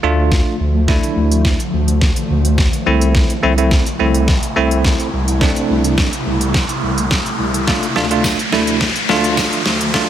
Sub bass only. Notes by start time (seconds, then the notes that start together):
0.03 D2
0.60 D2
1.16 D2
1.73 D2
2.30 D2
2.86 C2
3.43 C2
4.00 C2
4.56 C2
5.13 C2
5.69 C2
6.26 C2
6.83 C2
7.39 C2
7.96 D2
8.52 D2
9.09 D2
9.66 D2